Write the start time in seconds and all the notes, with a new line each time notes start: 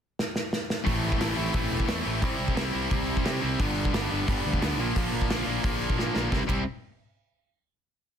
0.19 snare
0.36 snare
0.53 snare
0.70 snare
0.84 A1 A2 E3 A3 C4 E4, kick, open hi-hat
1.12 kick
1.18 A1 A2 E3 A3 C4 E4, snare, open hi-hat
1.35 A1 A2 E3 A3 C4 E4
1.52 A1 A2 E3 A3 C4 E4, kick, open hi-hat
1.71 E1
1.80 kick
1.86 E2 A2 E3 A3 C4 E4, snare, open hi-hat
2.03 A1 A2 E3 A3 C4 E4
2.21 C2 C3 G3 C4 E4, kick, open hi-hat
2.40 C2
2.48 kick
2.55 C2 C3 G3 C4 E4, snare, open hi-hat
2.73 C2 C3 G3 C4 E4
2.90 C2 C3 G3 C4 E4, kick, open hi-hat
3.17 kick
3.25 C3 G3 C4 E4, snare, open hi-hat
3.41 C2 C3 G3 C4 E4
3.59 G1 G2 D3 G3 B3 D4, kick, open hi-hat
3.85 kick
3.93 G1 G2 D3 G3 B3 D4, snare, open hi-hat
4.10 G1 G2 D3 G3 B3 D4
4.27 G1 G2 D3 G3 B3 D4, kick, open hi-hat
4.46 D2
4.54 kick
4.60 D2 G2 D3 G3 B3 D4, snare, open hi-hat
4.78 A#1 A#2 D3 F3 A#3 D4
4.96 A#1 A#2 D3 F3 A#3 D4, kick, open hi-hat
5.12 A#1
5.22 kick
5.30 A#1 A#2 D3 F3 A#3 D4, snare, open hi-hat
5.47 A#1 A#2 D3 F3 A#3 D4
5.63 A#1 A#2 D3 F3 A#3 D4, kick, open hi-hat
5.90 kick
5.98 A#2 D3 F3 A#3 D4, snare
6.15 A#1 A#2 D3 F3 A#3 D4, snare
6.31 C2 C3 G3 C4 E4, kick, snare
6.47 C2 C3 G3 C4 E4, kick, crash